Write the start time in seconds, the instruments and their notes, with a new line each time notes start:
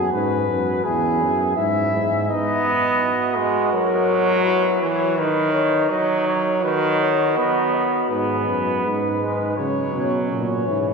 Already playing: euphonium F#2, flugelhorn F#4, cornet G#4
0.12 euphonium G#2, cornet B4
0.48 euphonium F#2
0.84 euphonium E2, flugelhorn E4, cornet G#4
1.21 euphonium F#2
1.56 euphonium G#2, flugelhorn E4, cornet E5
1.93 euphonium G#2
2.29 trombone B3, flugelhorn D#4, cornet D#5
3.01 flugelhorn F#4
3.37 trombone G#3
3.73 trombone F#3, cornet A#4
4.45 flugelhorn E4, cornet B4
4.80 trombone E3, cornet C#5
5.16 trombone D#3, flugelhorn D#4, cornet B4
5.54 cornet C#5
5.90 trombone F#3, cornet D#5
6.27 cornet C#5
6.63 trombone D#3, flugelhorn F#4, cornet B4
7.01 cornet C#5
7.37 trombone B3, cornet D#5
7.74 cornet D#5
8.09 euphonium G#2, trombone B3, flugelhorn G#4, cornet B4
8.47 euphonium F#2
8.82 euphonium G#2, flugelhorn D#4
9.20 trombone G#3
9.56 euphonium C#3, trombone F#3, flugelhorn C#4, cornet C#5
9.94 euphonium B2
10.31 euphonium A#2, cornet C#5
10.67 euphonium G#2, trombone E3